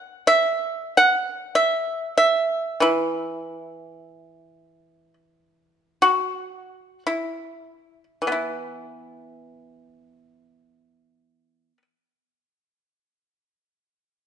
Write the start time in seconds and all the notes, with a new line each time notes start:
Already playing: F#5
0.27 E5
0.97 F#5
1.55 E5
2.18 E5
2.80 E3 E4
6.02 F#4
7.07 E4
8.22 E3
8.27 B3
8.32 E4